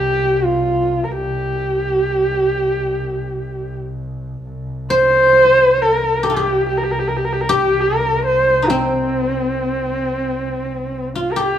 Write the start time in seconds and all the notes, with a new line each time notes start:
Already playing: C2 G4
0.44 F4
1.04 A#4
1.12 G4
4.44 C2
4.90 C5
5.82 A#4
6.23 G4
6.30 F4
6.36 G4
6.68 G4
6.77 A#4
6.84 G4
6.92 A#4
6.99 G4
7.08 A#4
7.17 G4
7.24 A#4
7.33 G4
7.41 A#4
7.49 G4
7.81 A#4
8.26 C5
8.62 D#4
8.70 C4
11.15 F4
11.32 G4 A#4
11.41 G4